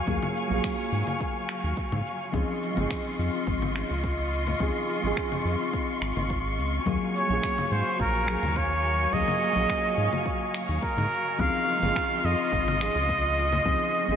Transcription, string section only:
Already playing: F#3 F5 G#5 C#6
2.33 F4 D#5 C6 C#6
6.87 F#3 F5 G#5
11.39 F4 D#5 C6

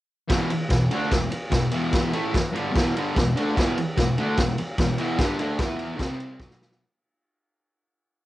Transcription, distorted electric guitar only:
0.28 E2 B2 E3
0.50 muted distorted electric guitar stroke
0.69 E2 B2
0.91 D3 A3 D4
1.12 E2 B2
1.30 muted distorted electric guitar stroke
1.50 E2 B2
1.72 E2 B2 E3
2.12 A2 E3 A3
2.33 muted distorted electric guitar stroke
2.52 G2 D3 G3
2.71 E2 B2 E3
2.95 G2 D3 G3
3.16 E2 B2
3.36 D3 A3 D4
3.55 E2 B2 E3
3.78 muted distorted electric guitar stroke
3.97 E2 B2
4.18 D3 A3 D4
4.37 E2 B2
4.59 muted distorted electric guitar stroke
4.79 E2 B2
4.99 E2 B2 E3
5.20 G2 D3 G3
5.40 D3 A3 D4
5.59 E3 B3 E4
5.98 C3 G3 C4
6.40 B2 F#3 B3

